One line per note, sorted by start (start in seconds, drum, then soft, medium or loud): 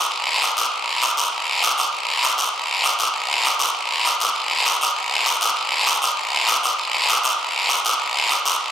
0.11 long guiro medium
0.42 short guiro medium
0.57 short guiro medium
0.72 long guiro medium
1.02 short guiro medium
1.17 short guiro medium
1.32 long guiro medium
1.63 short guiro medium
1.78 short guiro medium
1.93 long guiro medium
2.23 short guiro medium
2.38 short guiro medium
2.54 long guiro medium
2.84 short guiro medium
2.99 short guiro medium
3.14 long guiro medium
3.45 short guiro medium
3.59 short guiro medium
3.75 long guiro medium
4.05 short guiro medium
4.20 short guiro medium
4.35 long guiro medium
4.66 short guiro medium
4.81 short guiro medium
4.96 long guiro medium
5.26 short guiro medium
5.41 short guiro medium
5.56 long guiro medium
5.87 short guiro medium
6.02 short guiro medium
6.17 long guiro medium
6.48 short guiro medium
6.63 short guiro medium
6.79 long guiro medium
7.09 short guiro medium
7.24 short guiro medium
7.39 long guiro medium
7.69 short guiro medium
7.85 short guiro medium
8.00 long guiro medium
8.30 short guiro medium
8.46 short guiro medium
8.60 long guiro medium